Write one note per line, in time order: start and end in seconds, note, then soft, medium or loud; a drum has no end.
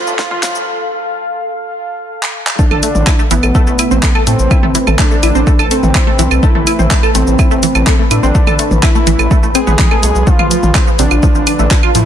0.00 0.17 F4 loud
0.00 0.67 F4 medium
0.00 2.55 A4 medium
0.00 0.67 C5 medium
0.00 2.55 F5 medium
0.00 0.67 B5 medium
0.07 0.15 A1 medium
0.07 shaker soft
0.19 0.24 F3 medium
0.19 0.65 F4 loud
0.19 kick loud
0.19 snare medium
0.19 shaker soft
0.31 0.38 F4 loud
0.31 mid tom loud
0.43 0.51 A2 loud
0.43 0.48 F3 medium
0.43 snare medium
0.43 open hi-hat loud
0.43 shaker medium
0.55 0.63 A1 medium
0.55 shaker soft
2.23 clap medium
2.47 clap loud
2.59 2.64 A3 medium
2.59 10.23 A3 medium
2.59 3.22 D4 loud
2.59 2.64 A4 medium
2.59 12.05 B4 medium
2.59 10.23 B5 medium
2.59 kick loud
2.59 shaker soft
2.71 2.79 A1 medium
2.71 2.78 A4 loud
2.71 2.78 A5 medium
2.71 mid tom medium
2.71 claves medium
2.83 2.88 A3 medium
2.83 2.88 A4 medium
2.83 open hi-hat loud
2.83 shaker medium
2.95 3.03 A1 medium
2.95 mid tom medium
2.95 shaker soft
3.07 3.14 E4 medium
3.07 3.14 E5 medium
3.07 kick loud
3.07 clap loud
3.07 claves medium
3.07 shaker soft
3.19 3.22 A3 loud
3.19 3.22 A4 medium
3.19 shaker soft
3.31 3.39 A1 loud
3.31 3.34 E3 loud
3.31 4.18 B3 loud
3.31 3.34 E4 medium
3.31 open hi-hat loud
3.31 shaker medium
3.43 3.51 A1 medium
3.43 3.46 A4 medium
3.43 3.46 A5 medium
3.43 claves medium
3.43 shaker soft
3.55 3.62 A3 loud
3.55 3.62 A4 medium
3.55 kick loud
3.55 shaker soft
3.67 3.75 A1 medium
3.67 3.72 A3 medium
3.67 3.72 A4 medium
3.67 shaker soft
3.79 3.84 E4 medium
3.79 3.84 E5 medium
3.79 open hi-hat loud
3.79 claves soft
3.79 shaker medium
3.91 3.99 A1 medium
3.91 3.96 C4 medium
3.91 3.96 C5 medium
3.91 shaker soft
4.03 4.08 A3 medium
4.03 4.08 A4 medium
4.03 kick loud
4.03 clap loud
4.03 shaker soft
4.15 4.22 A4 loud
4.15 4.22 A5 medium
4.15 claves medium
4.27 4.35 A2 loud
4.27 4.32 A3 medium
4.27 4.90 C4 loud
4.27 4.32 A4 medium
4.27 open hi-hat loud
4.27 shaker medium
4.39 4.47 A1 medium
4.39 shaker soft
4.51 4.58 E4 medium
4.51 4.58 E5 medium
4.51 kick loud
4.51 claves medium
4.51 shaker soft
4.63 4.71 A1 medium
4.63 4.66 A3 loud
4.63 4.66 A4 medium
4.63 mid tom medium
4.75 4.78 E3 loud
4.75 4.78 E4 medium
4.75 open hi-hat loud
4.75 shaker medium
4.87 4.95 A1 medium
4.87 4.90 A4 medium
4.87 4.90 A5 medium
4.87 mid tom medium
4.87 claves medium
4.87 shaker soft
4.99 5.06 A3 loud
4.99 5.62 D4 loud
4.99 5.06 A4 medium
4.99 kick loud
4.99 clap loud
4.99 shaker soft
5.11 5.16 A3 medium
5.11 5.16 A4 medium
5.11 shaker soft
5.23 5.31 A1 loud
5.23 5.28 E4 medium
5.23 5.28 E5 medium
5.23 open hi-hat loud
5.23 claves medium
5.23 shaker medium
5.35 5.43 A1 medium
5.35 5.40 C4 medium
5.35 5.40 C5 medium
5.35 shaker soft
5.47 5.52 A3 medium
5.47 5.52 A4 medium
5.47 kick loud
5.47 shaker soft
5.59 5.67 A1 medium
5.59 5.66 A4 loud
5.59 5.66 A5 medium
5.59 claves medium
5.59 shaker soft
5.71 5.76 A3 medium
5.71 6.45 C4 loud
5.71 5.76 A4 medium
5.71 open hi-hat loud
5.71 shaker medium
5.83 5.91 A1 medium
5.83 mid tom medium
5.83 shaker soft
5.95 6.02 E4 medium
5.95 6.02 E5 medium
5.95 kick loud
5.95 clap loud
5.95 claves medium
5.95 shaker soft
6.07 6.10 A3 loud
6.07 6.10 A4 medium
6.19 6.27 B1 medium
6.19 6.22 E3 loud
6.19 6.22 E4 medium
6.19 open hi-hat loud
6.19 shaker medium
6.31 6.39 B1 medium
6.31 6.34 A4 medium
6.31 6.34 A5 medium
6.31 claves medium
6.31 shaker soft
6.43 6.50 A3 loud
6.43 7.06 E4 loud
6.43 6.50 A4 medium
6.43 kick loud
6.43 shaker soft
6.55 6.63 A1 medium
6.55 6.60 A3 medium
6.55 6.60 A4 medium
6.55 mid tom medium
6.67 6.72 E4 medium
6.67 6.72 E5 medium
6.67 open hi-hat loud
6.67 claves medium
6.67 shaker medium
6.79 6.87 A1 medium
6.79 6.84 C4 medium
6.79 6.84 C5 medium
6.79 mid tom medium
6.79 shaker soft
6.91 6.96 A3 medium
6.91 6.96 A4 medium
6.91 kick loud
6.91 clap loud
6.91 shaker soft
7.03 7.10 A4 loud
7.03 7.10 A5 medium
7.03 claves medium
7.03 shaker soft
7.15 7.23 A1 loud
7.15 7.20 A3 medium
7.15 8.02 C4 loud
7.15 7.20 A4 medium
7.15 open hi-hat loud
7.15 shaker medium
7.27 7.35 A1 medium
7.27 shaker soft
7.39 7.46 E4 medium
7.39 7.46 E5 medium
7.39 kick loud
7.39 claves medium
7.39 shaker soft
7.51 7.59 A1 medium
7.51 7.54 A3 loud
7.51 7.54 A4 medium
7.51 shaker soft
7.63 7.66 E3 loud
7.63 7.66 E4 medium
7.63 open hi-hat loud
7.63 shaker medium
7.75 7.83 A1 medium
7.75 7.78 A4 medium
7.75 7.78 A5 medium
7.75 claves medium
7.75 shaker soft
7.87 7.94 A3 loud
7.87 7.94 A4 medium
7.87 kick loud
7.87 clap loud
7.87 shaker soft
7.99 8.04 A3 medium
7.99 8.04 A4 medium
8.11 8.19 A2 loud
8.11 8.74 D4 loud
8.11 8.16 E4 medium
8.11 8.16 E5 medium
8.11 open hi-hat loud
8.11 claves medium
8.11 shaker medium
8.23 8.31 A1 medium
8.23 8.28 C4 medium
8.23 8.28 C5 medium
8.23 shaker soft
8.35 8.40 A3 medium
8.35 8.40 A4 medium
8.35 kick loud
8.35 shaker soft
8.47 8.55 A1 medium
8.47 8.54 A4 loud
8.47 8.54 A5 medium
8.47 mid tom medium
8.47 claves medium
8.47 shaker soft
8.59 8.64 A3 medium
8.59 8.64 A4 medium
8.59 open hi-hat loud
8.59 shaker medium
8.71 8.79 A1 medium
8.71 mid tom medium
8.71 shaker soft
8.83 8.90 E4 medium
8.83 9.46 E4 loud
8.83 8.90 E5 medium
8.83 kick loud
8.83 clap loud
8.83 claves medium
8.83 shaker soft
8.95 8.98 A3 loud
8.95 8.98 A4 medium
8.95 shaker soft
9.07 9.15 A1 medium
9.07 9.10 E3 loud
9.07 9.10 E4 medium
9.07 open hi-hat loud
9.07 shaker medium
9.19 9.27 A1 medium
9.19 9.22 A4 medium
9.19 9.22 A5 medium
9.19 claves medium
9.19 shaker soft
9.31 9.38 A3 loud
9.31 9.38 A4 medium
9.31 kick loud
9.31 shaker soft
9.43 9.51 A1 medium
9.43 9.48 A3 medium
9.43 9.48 A4 medium
9.43 shaker soft
9.55 9.60 C4 loud
9.55 10.29 G#4 loud
9.55 9.60 C5 medium
9.55 open hi-hat loud
9.55 claves medium
9.55 shaker medium
9.67 9.75 A1 medium
9.67 9.72 B3 loud
9.67 9.72 B4 medium
9.67 mid tom medium
9.67 shaker soft
9.79 9.86 E3 medium
9.79 9.86 E4 medium
9.79 kick loud
9.79 clap loud
9.79 shaker soft
9.91 9.96 A4 loud
9.91 9.96 A5 medium
9.91 claves medium
10.03 10.11 B1 medium
10.03 10.06 A3 medium
10.03 10.06 A4 medium
10.03 open hi-hat loud
10.03 shaker medium
10.15 10.23 B1 medium
10.15 shaker soft
10.27 12.05 F3 medium
10.27 10.32 F3 medium
10.27 10.32 F4 medium
10.27 10.90 F4 loud
10.27 12.05 A5 medium
10.27 kick loud
10.27 shaker soft
10.39 10.47 A1 medium
10.39 10.46 F4 loud
10.39 10.46 F5 medium
10.39 mid tom medium
10.39 claves medium
10.51 10.56 F3 medium
10.51 10.56 F4 medium
10.51 open hi-hat loud
10.51 shaker medium
10.63 10.71 A1 medium
10.63 mid tom medium
10.63 shaker soft
10.75 10.82 C4 medium
10.75 10.82 C5 medium
10.75 kick loud
10.75 clap loud
10.75 claves medium
10.75 shaker soft
10.87 10.90 F3 loud
10.87 10.90 F4 medium
10.87 shaker soft
10.99 11.07 A1 medium
10.99 11.02 C3 loud
10.99 11.02 C4 medium
10.99 11.86 D4 loud
10.99 open hi-hat loud
10.99 shaker medium
11.11 11.19 A1 medium
11.11 11.14 F4 medium
11.11 11.14 F5 medium
11.11 claves medium
11.11 shaker soft
11.23 11.30 F3 loud
11.23 11.30 F4 medium
11.23 kick loud
11.23 shaker soft
11.35 11.43 A1 medium
11.35 11.40 F3 medium
11.35 11.40 F4 medium
11.35 shaker soft
11.47 11.52 D4 medium
11.47 11.52 D5 medium
11.47 open hi-hat loud
11.47 claves medium
11.47 shaker medium
11.59 11.67 A1 medium
11.59 11.64 A3 medium
11.59 11.64 A4 medium
11.59 shaker soft
11.71 11.76 F3 medium
11.71 11.76 F4 medium
11.71 kick loud
11.71 clap loud
11.71 shaker soft
11.83 11.90 F4 loud
11.83 11.90 F5 medium
11.83 claves medium
11.95 12.03 A2 loud
11.95 12.00 F3 medium
11.95 12.05 E4 loud
11.95 12.00 F4 medium
11.95 open hi-hat loud
11.95 shaker medium